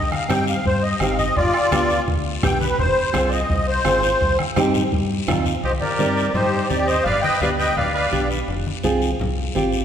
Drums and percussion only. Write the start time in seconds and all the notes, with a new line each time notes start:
0.12 bombo rim, high conga
0.30 bombo rim, high conga, short guiro
0.47 short guiro
0.65 bombo low, high conga, long guiro
1.00 bombo rim, high conga, short guiro
1.19 high conga, short guiro
1.36 bombo low, high conga, long guiro
1.54 bombo rim
1.72 bombo rim, high conga, short guiro
1.90 short guiro
2.08 bombo low, high conga, long guiro
2.43 bombo low, bombo rim, high conga, low conga, short guiro
2.61 high conga, short guiro
2.79 bombo low, high conga, long guiro
3.14 bombo rim, high conga, short guiro
3.32 short guiro
3.50 bombo low, high conga, long guiro
3.85 bombo rim, high conga, short guiro
4.03 short guiro
4.21 bombo low, high conga, long guiro
4.39 bombo rim, high conga
4.56 bombo rim, high conga, short guiro
4.74 low conga, short guiro
4.92 bombo low, high conga, long guiro
5.28 bombo low, bombo rim, high conga, low conga, short guiro
5.46 high conga, short guiro
5.64 long guiro
5.82 high conga
5.99 high conga, short guiro
6.17 short guiro
6.35 low conga, long guiro
6.71 high conga, short guiro
6.88 short guiro
7.06 low conga, long guiro
7.24 high conga
7.42 high conga, short guiro
7.60 short guiro
7.77 low conga, long guiro
8.13 high conga, short guiro
8.31 short guiro
8.48 long guiro
8.67 high conga
8.83 high conga, short guiro
9.02 short guiro
9.19 low conga, long guiro
9.55 high conga, short guiro
9.72 short guiro